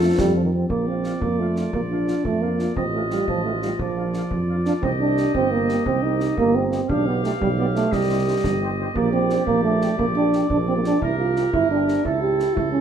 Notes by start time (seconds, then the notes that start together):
Already playing: F2 F3 A3 C4 F4 A4
0.01 A3
0.18 F2 G3, concert bass drum, snare
0.35 F3
0.44 D#3
0.53 C4
0.69 A#1 A#3 F4 D5, concert bass drum
0.87 C4 D4 F4 F5
1.04 D4 F4 F5, snare
1.21 F2 A#3, concert bass drum
1.39 A3 D4 F4 F5
1.56 D4 F4 F5, snare
1.73 A#1 A#3, concert bass drum
1.90 D4 F4 F5
2.08 D4 F4 F5, snare
2.24 F2 A3, concert bass drum
2.42 A#3 D4 F4 F5
2.59 D4 F4 F5, snare
2.76 A1 C4 F4 D#5, concert bass drum
2.93 A3 C4 D#4 F4 F5
3.10 G3 C4 D#4 F4 F5, snare
3.28 A1 F3, concert bass drum
3.45 A3 C4 D#4 F4 F5
3.62 G3 C4 D#4 F4 F5, snare
3.79 A#1 F3 D5, concert bass drum
3.97 A#3 D4 F4 F5
4.14 A#3 D4 F4 F5, snare
4.31 F2, concert bass drum
4.48 A#3 D4 F4 F5
4.65 A#3 D4 F4 F5, snare
4.82 C2 C4 G4 D#5, concert bass drum
5.00 G3 C4 D4 G4 D#5
5.17 G3 C4 G4 D#5, snare
5.34 G1 C4, concert bass drum
5.51 G3 A#3 C4 G4 D#5
5.69 G3 C4 G4 D#5, snare
5.86 C2 C4, concert bass drum
6.03 G3 C4 D#4 G4 D#5
6.20 G3 C4 G4 D#5, snare
6.37 G1 A#3, concert bass drum
6.55 G3 C4 G4 D#5
6.72 G3 C4 G4 D#5, snare
6.89 B1 D4 G4 F5, concert bass drum
7.06 G3 B3 F4 G4 D5
7.24 G3 A3 F4 G4 D5, snare
7.41 B1 G3, concert bass drum
7.58 G3 B3 F4 G4 D5
7.75 G3 A3 F4 G4 D5, snare
7.92 C2 G3 D#5, concert bass drum, snare
8.10 G3 D#4 G4 C5
8.27 G3 D#4 G4 C5
8.44 G1, concert bass drum, snare
8.61 G3 D#4 G4 C5
8.79 G3 D#4 G4 C5
8.95 A#1 A#3 G4 D5, concert bass drum
9.13 G3 C4 D4 G4 D5
9.30 G3 D4 G4 D5, snare
9.46 A#1 A#3, concert bass drum
9.64 G3 A3 D4 G4 D5
9.81 G3 D4 G4 D5, snare
9.98 A#1 A#3, concert bass drum
10.16 G3 D4 G4 D5
10.33 G3 D4 G4 D5, snare
10.50 A#1 D4, concert bass drum
10.67 G3 C4 D4 G4 D5
10.77 A#3
10.84 G3 D4 G4 D5, snare
11.01 C2 E4 G4 A#4, concert bass drum
11.18 G3 C4 F4 G4 A#4
11.36 G3 C4 G4 A#4, snare
11.53 G1 E4, concert bass drum
11.70 G3 C4 D4 G4 A#4
11.88 G3 C4 G4 A#4, snare
12.04 C#2 E4 A4, concert bass drum
12.22 A3 E4 G4 A4
12.40 A3 E4 A4, snare
12.56 C#2 E4, concert bass drum
12.72 A3 C#4 E4 A4